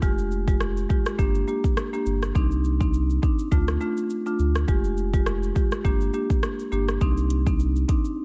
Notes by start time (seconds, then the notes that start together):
0.02 F1 G#3 F4 G4, kick, shaker
0.18 shaker
0.31 shaker
0.47 G#3 F4 G4, kick, shaker
0.60 cross-stick, shaker
0.77 shaker
0.89 G#3 F4 G4, kick, shaker
1.06 cross-stick, shaker
1.18 G1 A#3 D4 G4, kick, shaker
1.35 shaker
1.48 A#3 D4 G4, shaker
1.64 kick, shaker
1.77 cross-stick, shaker
1.93 A#3 D4 G4, shaker
2.06 G1, shaker
2.23 cross-stick, shaker
2.35 C2 C4 D4 D#4, kick, shaker
2.51 shaker
2.64 shaker
2.80 C4 D4 D#4, kick, shaker
2.94 shaker
3.10 shaker
3.22 C4 D4 D#4, kick, shaker
3.39 shaker
3.51 D2 A3 D4 F4, kick, shaker
3.68 cross-stick, shaker
3.81 A3 D4 F4, shaker
3.97 shaker
4.10 shaker
4.26 A3 D4 F4, shaker
4.39 D2, shaker
4.55 cross-stick, shaker
4.68 F1 G#3 F4 G4, kick, shaker
4.84 shaker
4.97 shaker
5.13 G#3 F4 G4, kick, shaker
5.26 cross-stick, shaker
5.43 shaker
5.55 G#3 F4 G4, kick, shaker
5.72 cross-stick, shaker
5.84 G1 A#3 D4 G4, kick, shaker
6.01 shaker
6.14 A#3 D4 G4, shaker
6.30 kick, shaker
6.43 cross-stick, shaker
6.59 shaker
6.72 G1 A#3 D4 G4, shaker
6.88 cross-stick, shaker
7.01 C2 C4 D4 D#4, kick, shaker
7.17 shaker
7.30 closed hi-hat, shaker
7.46 C4 D4 D#4, kick, shaker
7.60 shaker
7.76 shaker
7.88 C4 D4 D#4, kick, closed hi-hat, shaker
8.05 shaker